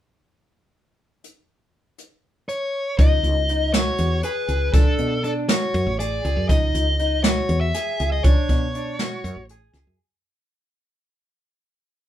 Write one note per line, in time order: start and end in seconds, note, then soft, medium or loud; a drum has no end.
1.24 closed hi-hat medium
1.98 closed hi-hat medium
2.49 2.98 C#5 medium
2.49 closed hi-hat soft
2.99 3.21 C#2 medium
2.99 3.41 D#4 medium
2.99 3.73 D#5 medium
2.99 kick medium
2.99 closed hi-hat medium
3.23 3.89 C#2 medium
3.23 closed hi-hat medium
3.49 3.70 D#4 medium
3.49 closed hi-hat medium
3.74 4.16 F#4 medium
3.74 4.21 C#5 medium
3.74 snare medium
3.74 closed hi-hat medium
3.98 4.21 E2 medium
3.98 closed hi-hat medium
4.23 4.45 G#4 medium
4.23 4.73 B4 medium
4.23 closed hi-hat medium
4.48 4.71 C#2 medium
4.48 4.71 G#4 medium
4.48 closed hi-hat medium
4.74 4.85 C#2 medium
4.74 5.16 D4 medium
4.74 5.23 A4 medium
4.74 kick loud
4.74 closed hi-hat medium
4.98 5.65 B2 medium
4.98 closed hi-hat medium
5.24 5.45 D4 medium
5.24 5.31 A4 medium
5.24 closed hi-hat medium
5.49 5.91 F#4 medium
5.49 5.96 C#5 medium
5.49 snare medium
5.49 closed hi-hat medium
5.74 5.85 F#2 medium
5.74 closed hi-hat soft
5.86 6.20 A1 medium
5.99 6.20 G#4 medium
5.99 6.46 D5 medium
5.99 closed hi-hat medium
6.25 6.36 C#2 medium
6.25 6.46 G#4 medium
6.25 closed hi-hat soft
6.37 6.48 F#2 medium
6.49 6.72 C#2 medium
6.49 6.91 D#4 medium
6.49 7.24 D#5 medium
6.49 kick medium
6.49 closed hi-hat medium
6.75 7.40 C#2 medium
6.75 closed hi-hat medium
6.99 7.20 D#4 medium
6.99 closed hi-hat medium
7.24 7.66 F#4 medium
7.24 7.60 C#5 medium
7.24 snare loud
7.24 closed hi-hat medium
7.49 7.71 E2 medium
7.49 closed hi-hat soft
7.61 8.08 E5 loud
7.74 7.95 G#4 medium
7.74 snare soft
7.74 closed hi-hat medium
7.99 8.22 C#2 medium
7.99 8.21 G#4 medium
7.99 closed hi-hat medium
8.12 8.24 D#5 medium
8.24 8.35 C#2 medium
8.24 8.66 D4 medium
8.24 9.45 C#5 medium
8.24 kick medium
8.24 closed hi-hat medium
8.49 9.15 B2 medium
8.49 kick medium
8.49 closed hi-hat medium
8.75 8.95 D4 medium
8.75 closed hi-hat medium
8.99 9.41 F#4 medium
8.99 snare loud
8.99 closed hi-hat medium
9.24 9.35 F#2 medium
9.24 closed hi-hat medium
9.36 9.69 A1 medium
9.49 9.71 G#4 medium
9.49 closed hi-hat medium
9.73 9.85 C#2 medium
9.73 9.95 G#4 medium
9.73 snare soft
9.73 closed hi-hat medium
9.87 9.98 F#2 medium